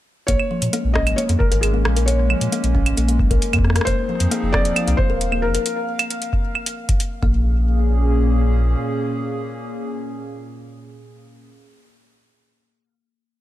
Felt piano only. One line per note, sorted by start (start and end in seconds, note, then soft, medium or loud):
0.27 0.97 C#5 loud
0.94 1.15 D#5 loud
1.16 1.21 C#5 loud
1.39 1.63 A#4 medium
1.61 2.08 G#4 medium
2.06 3.37 C#5 loud
3.85 4.49 C5 loud
4.52 4.95 D5 loud
4.97 5.44 C5 loud
5.42 6.95 A#4 loud